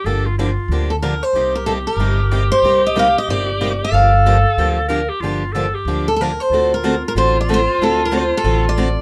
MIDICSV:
0, 0, Header, 1, 5, 480
1, 0, Start_track
1, 0, Key_signature, -2, "minor"
1, 0, Tempo, 322581
1, 77, Time_signature, 4, 2, 24, 8
1, 13416, End_track
2, 0, Start_track
2, 0, Title_t, "Steel-string acoustic guitar"
2, 0, Program_c, 0, 25
2, 1342, Note_on_c, 0, 69, 71
2, 1417, Note_off_c, 0, 69, 0
2, 1525, Note_on_c, 0, 70, 78
2, 1827, Note_off_c, 0, 70, 0
2, 1827, Note_on_c, 0, 72, 84
2, 2308, Note_off_c, 0, 72, 0
2, 2314, Note_on_c, 0, 70, 72
2, 2468, Note_off_c, 0, 70, 0
2, 2474, Note_on_c, 0, 69, 80
2, 2553, Note_off_c, 0, 69, 0
2, 2783, Note_on_c, 0, 70, 84
2, 3744, Note_on_c, 0, 72, 97
2, 3761, Note_off_c, 0, 70, 0
2, 4181, Note_off_c, 0, 72, 0
2, 4263, Note_on_c, 0, 75, 89
2, 4424, Note_off_c, 0, 75, 0
2, 4452, Note_on_c, 0, 77, 96
2, 4695, Note_off_c, 0, 77, 0
2, 4736, Note_on_c, 0, 75, 89
2, 4901, Note_off_c, 0, 75, 0
2, 4916, Note_on_c, 0, 74, 95
2, 5687, Note_off_c, 0, 74, 0
2, 5721, Note_on_c, 0, 77, 92
2, 7541, Note_off_c, 0, 77, 0
2, 9047, Note_on_c, 0, 69, 82
2, 9154, Note_off_c, 0, 69, 0
2, 9172, Note_on_c, 0, 69, 69
2, 9239, Note_off_c, 0, 69, 0
2, 9239, Note_on_c, 0, 70, 88
2, 9525, Note_off_c, 0, 70, 0
2, 9525, Note_on_c, 0, 72, 94
2, 9984, Note_off_c, 0, 72, 0
2, 10029, Note_on_c, 0, 70, 87
2, 10445, Note_off_c, 0, 70, 0
2, 10538, Note_on_c, 0, 70, 91
2, 10594, Note_off_c, 0, 70, 0
2, 10681, Note_on_c, 0, 72, 96
2, 10955, Note_off_c, 0, 72, 0
2, 11021, Note_on_c, 0, 74, 86
2, 11137, Note_off_c, 0, 74, 0
2, 11216, Note_on_c, 0, 72, 101
2, 11614, Note_off_c, 0, 72, 0
2, 11656, Note_on_c, 0, 69, 91
2, 11924, Note_off_c, 0, 69, 0
2, 11985, Note_on_c, 0, 70, 80
2, 12100, Note_off_c, 0, 70, 0
2, 12158, Note_on_c, 0, 72, 90
2, 12417, Note_off_c, 0, 72, 0
2, 12460, Note_on_c, 0, 69, 91
2, 12864, Note_off_c, 0, 69, 0
2, 12928, Note_on_c, 0, 74, 99
2, 13416, Note_off_c, 0, 74, 0
2, 13416, End_track
3, 0, Start_track
3, 0, Title_t, "Clarinet"
3, 0, Program_c, 1, 71
3, 86, Note_on_c, 1, 69, 105
3, 381, Note_on_c, 1, 65, 88
3, 403, Note_off_c, 1, 69, 0
3, 552, Note_off_c, 1, 65, 0
3, 561, Note_on_c, 1, 65, 80
3, 1333, Note_off_c, 1, 65, 0
3, 2000, Note_on_c, 1, 67, 92
3, 5772, Note_off_c, 1, 67, 0
3, 5827, Note_on_c, 1, 69, 107
3, 7207, Note_off_c, 1, 69, 0
3, 7266, Note_on_c, 1, 70, 95
3, 7575, Note_on_c, 1, 67, 84
3, 7597, Note_off_c, 1, 70, 0
3, 7745, Note_on_c, 1, 65, 85
3, 7767, Note_off_c, 1, 67, 0
3, 8217, Note_on_c, 1, 69, 91
3, 8239, Note_off_c, 1, 65, 0
3, 8551, Note_on_c, 1, 67, 80
3, 8574, Note_off_c, 1, 69, 0
3, 9077, Note_off_c, 1, 67, 0
3, 9693, Note_on_c, 1, 65, 102
3, 13416, Note_off_c, 1, 65, 0
3, 13416, End_track
4, 0, Start_track
4, 0, Title_t, "Steel-string acoustic guitar"
4, 0, Program_c, 2, 25
4, 84, Note_on_c, 2, 50, 59
4, 91, Note_on_c, 2, 53, 66
4, 93, Note_on_c, 2, 62, 61
4, 95, Note_on_c, 2, 58, 61
4, 96, Note_on_c, 2, 67, 62
4, 383, Note_off_c, 2, 50, 0
4, 387, Note_off_c, 2, 53, 0
4, 388, Note_off_c, 2, 62, 0
4, 389, Note_off_c, 2, 58, 0
4, 389, Note_off_c, 2, 67, 0
4, 579, Note_on_c, 2, 50, 77
4, 579, Note_on_c, 2, 53, 86
4, 587, Note_on_c, 2, 58, 90
4, 587, Note_on_c, 2, 67, 85
4, 590, Note_on_c, 2, 62, 85
4, 731, Note_off_c, 2, 50, 0
4, 731, Note_off_c, 2, 53, 0
4, 735, Note_off_c, 2, 58, 0
4, 735, Note_off_c, 2, 67, 0
4, 736, Note_off_c, 2, 62, 0
4, 1064, Note_on_c, 2, 50, 63
4, 1068, Note_on_c, 2, 53, 61
4, 1072, Note_on_c, 2, 62, 67
4, 1073, Note_on_c, 2, 58, 68
4, 1076, Note_on_c, 2, 67, 75
4, 1352, Note_off_c, 2, 50, 0
4, 1354, Note_off_c, 2, 53, 0
4, 1356, Note_off_c, 2, 62, 0
4, 1357, Note_off_c, 2, 58, 0
4, 1358, Note_off_c, 2, 67, 0
4, 1526, Note_on_c, 2, 50, 81
4, 1534, Note_on_c, 2, 53, 72
4, 1534, Note_on_c, 2, 58, 85
4, 1534, Note_on_c, 2, 67, 81
4, 1537, Note_on_c, 2, 62, 89
4, 1683, Note_off_c, 2, 50, 0
4, 1687, Note_off_c, 2, 53, 0
4, 1687, Note_off_c, 2, 58, 0
4, 1688, Note_off_c, 2, 67, 0
4, 1689, Note_off_c, 2, 62, 0
4, 2007, Note_on_c, 2, 48, 57
4, 2016, Note_on_c, 2, 55, 58
4, 2021, Note_on_c, 2, 58, 53
4, 2022, Note_on_c, 2, 67, 64
4, 2025, Note_on_c, 2, 63, 62
4, 2303, Note_off_c, 2, 48, 0
4, 2307, Note_off_c, 2, 55, 0
4, 2310, Note_off_c, 2, 58, 0
4, 2310, Note_off_c, 2, 67, 0
4, 2312, Note_off_c, 2, 63, 0
4, 2473, Note_on_c, 2, 48, 79
4, 2475, Note_on_c, 2, 58, 89
4, 2482, Note_on_c, 2, 55, 80
4, 2489, Note_on_c, 2, 67, 87
4, 2493, Note_on_c, 2, 63, 77
4, 2636, Note_off_c, 2, 48, 0
4, 2637, Note_off_c, 2, 58, 0
4, 2641, Note_off_c, 2, 55, 0
4, 2644, Note_off_c, 2, 67, 0
4, 2646, Note_off_c, 2, 63, 0
4, 2969, Note_on_c, 2, 55, 63
4, 2973, Note_on_c, 2, 48, 58
4, 2978, Note_on_c, 2, 58, 66
4, 2980, Note_on_c, 2, 63, 67
4, 2984, Note_on_c, 2, 67, 67
4, 3263, Note_off_c, 2, 55, 0
4, 3265, Note_off_c, 2, 48, 0
4, 3268, Note_off_c, 2, 58, 0
4, 3269, Note_off_c, 2, 63, 0
4, 3271, Note_off_c, 2, 67, 0
4, 3442, Note_on_c, 2, 55, 80
4, 3445, Note_on_c, 2, 63, 74
4, 3449, Note_on_c, 2, 48, 75
4, 3449, Note_on_c, 2, 58, 78
4, 3461, Note_on_c, 2, 67, 84
4, 3600, Note_off_c, 2, 55, 0
4, 3602, Note_off_c, 2, 63, 0
4, 3603, Note_off_c, 2, 48, 0
4, 3603, Note_off_c, 2, 58, 0
4, 3609, Note_off_c, 2, 67, 0
4, 3923, Note_on_c, 2, 48, 58
4, 3934, Note_on_c, 2, 63, 66
4, 3937, Note_on_c, 2, 58, 58
4, 3942, Note_on_c, 2, 55, 56
4, 3950, Note_on_c, 2, 67, 73
4, 4220, Note_off_c, 2, 48, 0
4, 4225, Note_off_c, 2, 63, 0
4, 4226, Note_off_c, 2, 58, 0
4, 4229, Note_off_c, 2, 55, 0
4, 4233, Note_off_c, 2, 67, 0
4, 4396, Note_on_c, 2, 48, 77
4, 4404, Note_on_c, 2, 58, 79
4, 4410, Note_on_c, 2, 55, 81
4, 4419, Note_on_c, 2, 63, 93
4, 4424, Note_on_c, 2, 67, 85
4, 4556, Note_off_c, 2, 48, 0
4, 4560, Note_off_c, 2, 58, 0
4, 4563, Note_off_c, 2, 55, 0
4, 4568, Note_off_c, 2, 63, 0
4, 4570, Note_off_c, 2, 67, 0
4, 4904, Note_on_c, 2, 48, 62
4, 4906, Note_on_c, 2, 55, 66
4, 4912, Note_on_c, 2, 58, 63
4, 4914, Note_on_c, 2, 63, 67
4, 4920, Note_on_c, 2, 67, 72
4, 5189, Note_off_c, 2, 48, 0
4, 5191, Note_off_c, 2, 55, 0
4, 5194, Note_off_c, 2, 58, 0
4, 5194, Note_off_c, 2, 63, 0
4, 5198, Note_off_c, 2, 67, 0
4, 5368, Note_on_c, 2, 48, 73
4, 5368, Note_on_c, 2, 55, 84
4, 5370, Note_on_c, 2, 63, 91
4, 5374, Note_on_c, 2, 58, 85
4, 5388, Note_on_c, 2, 67, 83
4, 5522, Note_off_c, 2, 48, 0
4, 5522, Note_off_c, 2, 55, 0
4, 5523, Note_off_c, 2, 63, 0
4, 5525, Note_off_c, 2, 58, 0
4, 5532, Note_off_c, 2, 67, 0
4, 5858, Note_on_c, 2, 53, 63
4, 5862, Note_on_c, 2, 50, 59
4, 5863, Note_on_c, 2, 67, 66
4, 5866, Note_on_c, 2, 58, 71
4, 5867, Note_on_c, 2, 62, 63
4, 6146, Note_off_c, 2, 53, 0
4, 6148, Note_off_c, 2, 50, 0
4, 6149, Note_off_c, 2, 67, 0
4, 6150, Note_off_c, 2, 58, 0
4, 6151, Note_off_c, 2, 62, 0
4, 6341, Note_on_c, 2, 50, 80
4, 6341, Note_on_c, 2, 53, 82
4, 6347, Note_on_c, 2, 67, 85
4, 6349, Note_on_c, 2, 58, 81
4, 6353, Note_on_c, 2, 62, 92
4, 6488, Note_off_c, 2, 50, 0
4, 6488, Note_off_c, 2, 53, 0
4, 6491, Note_off_c, 2, 67, 0
4, 6492, Note_off_c, 2, 58, 0
4, 6494, Note_off_c, 2, 62, 0
4, 6819, Note_on_c, 2, 50, 64
4, 6820, Note_on_c, 2, 53, 65
4, 6826, Note_on_c, 2, 62, 63
4, 6827, Note_on_c, 2, 58, 60
4, 6829, Note_on_c, 2, 67, 72
4, 7106, Note_off_c, 2, 50, 0
4, 7107, Note_off_c, 2, 53, 0
4, 7110, Note_off_c, 2, 58, 0
4, 7110, Note_off_c, 2, 62, 0
4, 7112, Note_off_c, 2, 67, 0
4, 7271, Note_on_c, 2, 50, 82
4, 7278, Note_on_c, 2, 53, 78
4, 7286, Note_on_c, 2, 58, 83
4, 7288, Note_on_c, 2, 62, 85
4, 7290, Note_on_c, 2, 67, 87
4, 7433, Note_off_c, 2, 50, 0
4, 7436, Note_off_c, 2, 53, 0
4, 7440, Note_off_c, 2, 58, 0
4, 7441, Note_off_c, 2, 62, 0
4, 7442, Note_off_c, 2, 67, 0
4, 7774, Note_on_c, 2, 50, 60
4, 7788, Note_on_c, 2, 53, 61
4, 7790, Note_on_c, 2, 58, 58
4, 7795, Note_on_c, 2, 62, 65
4, 7795, Note_on_c, 2, 67, 70
4, 8064, Note_off_c, 2, 50, 0
4, 8071, Note_off_c, 2, 53, 0
4, 8072, Note_off_c, 2, 58, 0
4, 8074, Note_off_c, 2, 67, 0
4, 8075, Note_off_c, 2, 62, 0
4, 8254, Note_on_c, 2, 50, 76
4, 8265, Note_on_c, 2, 62, 85
4, 8268, Note_on_c, 2, 53, 84
4, 8268, Note_on_c, 2, 58, 79
4, 8275, Note_on_c, 2, 67, 87
4, 8404, Note_off_c, 2, 50, 0
4, 8410, Note_off_c, 2, 62, 0
4, 8412, Note_off_c, 2, 53, 0
4, 8412, Note_off_c, 2, 58, 0
4, 8415, Note_off_c, 2, 67, 0
4, 8742, Note_on_c, 2, 50, 58
4, 8746, Note_on_c, 2, 53, 63
4, 8750, Note_on_c, 2, 62, 68
4, 8752, Note_on_c, 2, 67, 65
4, 8756, Note_on_c, 2, 58, 62
4, 9028, Note_off_c, 2, 50, 0
4, 9030, Note_off_c, 2, 53, 0
4, 9033, Note_off_c, 2, 62, 0
4, 9033, Note_off_c, 2, 67, 0
4, 9036, Note_off_c, 2, 58, 0
4, 9236, Note_on_c, 2, 50, 69
4, 9238, Note_on_c, 2, 53, 74
4, 9245, Note_on_c, 2, 62, 84
4, 9249, Note_on_c, 2, 58, 82
4, 9256, Note_on_c, 2, 67, 81
4, 9376, Note_off_c, 2, 50, 0
4, 9377, Note_off_c, 2, 53, 0
4, 9380, Note_off_c, 2, 62, 0
4, 9382, Note_off_c, 2, 58, 0
4, 9386, Note_off_c, 2, 67, 0
4, 9716, Note_on_c, 2, 57, 53
4, 9718, Note_on_c, 2, 50, 60
4, 9726, Note_on_c, 2, 69, 62
4, 9727, Note_on_c, 2, 60, 62
4, 9727, Note_on_c, 2, 66, 67
4, 9996, Note_off_c, 2, 57, 0
4, 9997, Note_off_c, 2, 50, 0
4, 10001, Note_off_c, 2, 69, 0
4, 10002, Note_off_c, 2, 60, 0
4, 10002, Note_off_c, 2, 66, 0
4, 10171, Note_on_c, 2, 50, 77
4, 10178, Note_on_c, 2, 57, 80
4, 10179, Note_on_c, 2, 66, 96
4, 10183, Note_on_c, 2, 69, 89
4, 10188, Note_on_c, 2, 60, 90
4, 10324, Note_off_c, 2, 50, 0
4, 10328, Note_off_c, 2, 57, 0
4, 10328, Note_off_c, 2, 66, 0
4, 10330, Note_off_c, 2, 69, 0
4, 10333, Note_off_c, 2, 60, 0
4, 10655, Note_on_c, 2, 50, 61
4, 10659, Note_on_c, 2, 66, 62
4, 10662, Note_on_c, 2, 57, 62
4, 10667, Note_on_c, 2, 69, 71
4, 10669, Note_on_c, 2, 60, 61
4, 10946, Note_off_c, 2, 50, 0
4, 10948, Note_off_c, 2, 66, 0
4, 10950, Note_off_c, 2, 57, 0
4, 10952, Note_off_c, 2, 69, 0
4, 10953, Note_off_c, 2, 60, 0
4, 11139, Note_on_c, 2, 60, 76
4, 11144, Note_on_c, 2, 50, 81
4, 11146, Note_on_c, 2, 66, 81
4, 11148, Note_on_c, 2, 57, 89
4, 11160, Note_on_c, 2, 69, 86
4, 11289, Note_off_c, 2, 60, 0
4, 11291, Note_off_c, 2, 50, 0
4, 11292, Note_off_c, 2, 66, 0
4, 11293, Note_off_c, 2, 57, 0
4, 11299, Note_off_c, 2, 69, 0
4, 11625, Note_on_c, 2, 50, 59
4, 11632, Note_on_c, 2, 69, 66
4, 11633, Note_on_c, 2, 57, 61
4, 11633, Note_on_c, 2, 60, 63
4, 11642, Note_on_c, 2, 66, 67
4, 11912, Note_off_c, 2, 50, 0
4, 11916, Note_off_c, 2, 57, 0
4, 11916, Note_off_c, 2, 60, 0
4, 11916, Note_off_c, 2, 69, 0
4, 11921, Note_off_c, 2, 66, 0
4, 12075, Note_on_c, 2, 50, 83
4, 12076, Note_on_c, 2, 57, 80
4, 12082, Note_on_c, 2, 66, 85
4, 12085, Note_on_c, 2, 60, 89
4, 12095, Note_on_c, 2, 69, 96
4, 12238, Note_off_c, 2, 50, 0
4, 12239, Note_off_c, 2, 57, 0
4, 12241, Note_off_c, 2, 66, 0
4, 12243, Note_off_c, 2, 60, 0
4, 12248, Note_off_c, 2, 69, 0
4, 12562, Note_on_c, 2, 50, 62
4, 12564, Note_on_c, 2, 57, 65
4, 12567, Note_on_c, 2, 60, 70
4, 12567, Note_on_c, 2, 66, 72
4, 12571, Note_on_c, 2, 69, 69
4, 12862, Note_off_c, 2, 50, 0
4, 12863, Note_off_c, 2, 57, 0
4, 12864, Note_off_c, 2, 60, 0
4, 12864, Note_off_c, 2, 66, 0
4, 12866, Note_off_c, 2, 69, 0
4, 13051, Note_on_c, 2, 50, 74
4, 13057, Note_on_c, 2, 57, 86
4, 13059, Note_on_c, 2, 66, 84
4, 13063, Note_on_c, 2, 60, 83
4, 13066, Note_on_c, 2, 69, 90
4, 13207, Note_off_c, 2, 50, 0
4, 13210, Note_off_c, 2, 57, 0
4, 13211, Note_off_c, 2, 66, 0
4, 13213, Note_off_c, 2, 60, 0
4, 13214, Note_off_c, 2, 69, 0
4, 13416, End_track
5, 0, Start_track
5, 0, Title_t, "Upright bass"
5, 0, Program_c, 3, 32
5, 65, Note_on_c, 3, 31, 80
5, 836, Note_off_c, 3, 31, 0
5, 1016, Note_on_c, 3, 38, 84
5, 1790, Note_off_c, 3, 38, 0
5, 1982, Note_on_c, 3, 36, 77
5, 2753, Note_off_c, 3, 36, 0
5, 2918, Note_on_c, 3, 31, 81
5, 3699, Note_off_c, 3, 31, 0
5, 3900, Note_on_c, 3, 36, 84
5, 4671, Note_off_c, 3, 36, 0
5, 4886, Note_on_c, 3, 31, 88
5, 5646, Note_off_c, 3, 31, 0
5, 5826, Note_on_c, 3, 31, 88
5, 6594, Note_off_c, 3, 31, 0
5, 6801, Note_on_c, 3, 38, 82
5, 7563, Note_off_c, 3, 38, 0
5, 7743, Note_on_c, 3, 31, 76
5, 8513, Note_off_c, 3, 31, 0
5, 8707, Note_on_c, 3, 38, 78
5, 9476, Note_off_c, 3, 38, 0
5, 9669, Note_on_c, 3, 38, 77
5, 10438, Note_off_c, 3, 38, 0
5, 10639, Note_on_c, 3, 33, 76
5, 11405, Note_off_c, 3, 33, 0
5, 11582, Note_on_c, 3, 38, 79
5, 12356, Note_off_c, 3, 38, 0
5, 12556, Note_on_c, 3, 33, 82
5, 13325, Note_off_c, 3, 33, 0
5, 13416, End_track
0, 0, End_of_file